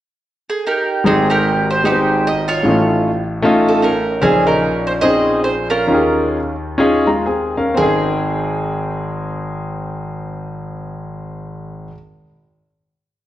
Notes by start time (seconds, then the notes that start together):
0.49 G#4
0.66 D#4 G4 A#4
1.04 G#1 G#2 G#3 C4 D#4 G4 G#4
1.29 D#4 G4 A#4
1.71 C5
1.84 G#3 B3 D#4 G4 C5
1.90 C4
2.27 D#5
2.48 F4 C#5
2.63 A1 A2 G#3 C#4 D#4 F4
2.68 A3
3.42 A3 C#4 D#4 F4
3.69 A4
3.82 C#4 D#4 A#4
4.21 A#1 A#2 C#3 C4 C#4 D#4 G#4 C5
4.47 C#4 D#4 A#4
4.87 C5
5.01 C4 C#4 D#4 G#4 C5 D#5
5.44 C5
5.70 C#4 F4 A#4
5.87 D#2 D#3 C#4 D#4 F4 G4
5.94 G#4
6.78 C#4 D#4 F4 G#4
7.07 G#3 F4 A#5
7.26 C4 G#4 G#5
7.57 C#4 A#4 F5
7.74 G#1 C4 D#4 G#4
7.80 G#4 G5